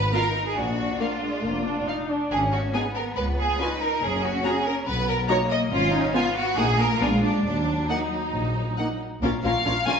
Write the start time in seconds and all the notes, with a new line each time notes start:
Already playing: B3 B4
0.13 B3 D#4 F4 A#4 F5
0.47 G#4
0.56 A#1 D4 F#4
1.00 A#3 F4 F5
1.21 G#3
1.43 F1 A#3
1.66 D4
1.87 D#4 F5
2.09 D4
2.30 G#1 C#4 G#4
2.52 F#4
2.73 B3 D#4 G#4 G#5
2.95 A#4
3.17 C#2 B4
3.39 G#4
3.60 C#4 D#4 F4 B4 G#5
3.81 A#4
4.02 F#1 C#4 G#4
4.23 F#4
4.44 C#4 F#4 G#4 A#5
4.66 A#4
4.87 B1 B3 B4
5.09 A#4
5.28 A#3 D#4 F#4 C#5 A#5
5.51 D#5
5.71 G#1 C#4 F4
5.93 D#4
6.14 B3 F4 G#5
6.36 F#4
6.57 A#1 A#3 D#4 G#4 F#5
6.79 A#4
7.00 A#1 G#3 B3 D4 F4 G#5
7.22 D4
7.45 D#2 F#3 D4
7.88 A#3 D#4 F#5
8.34 A#1
8.78 A#3 D#4 F#5
9.22 A#1 A#2 C#4 F4 A#4 F5
9.44 A#1 A#2 C#4 F4 A#4 F5
9.65 A#1 A#2 C#4 F4 A#4 F5
9.87 A#1 A#2 C#4 F4 A#4 F5 G#5